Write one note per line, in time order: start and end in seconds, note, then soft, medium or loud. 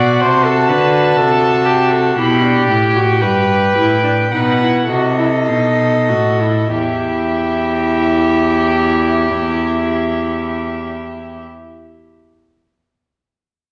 0.00 0.23 B2 medium
0.00 2.19 F#4 loud
0.00 0.23 D5 loud
0.00 0.22 F#5 loud
0.20 0.71 C3 medium
0.20 0.46 C5 loud
0.20 2.17 A5 loud
0.45 0.70 A4 loud
0.68 1.18 D3 medium
0.68 1.18 B4 loud
1.17 2.16 C3 medium
1.17 1.67 A4 loud
1.66 1.93 G4 loud
1.91 2.15 A4 loud
2.16 2.68 B2 medium
2.16 2.43 E4 medium
2.16 3.23 G4 loud
2.16 2.68 B5 loud
2.43 2.72 D4 medium
2.69 3.24 A2 medium
2.69 2.98 E4 medium
2.69 4.33 G5 medium
2.97 3.24 F#4 medium
3.22 3.75 G2 medium
3.22 3.76 G4 medium
3.22 4.30 B4 loud
3.76 4.31 A2 medium
3.76 4.04 E4 medium
4.04 4.12 D4 medium
4.30 4.88 B2 medium
4.30 4.60 D#4 medium
4.30 4.86 B4 medium
4.30 4.91 F#5 medium
4.60 4.89 E4 medium
4.87 5.49 C3 medium
4.87 5.18 F#4 medium
4.87 6.68 A4 medium
4.87 6.73 D#5 medium
5.19 5.27 E4 medium
5.48 6.11 B2 medium
5.48 6.10 D#4 medium
6.09 6.72 A2 medium
6.09 6.42 F#4 medium
6.40 6.72 E4 medium
6.72 11.42 E2 medium
6.72 11.42 E4 medium
6.72 11.41 G4 medium
6.72 11.43 E5 medium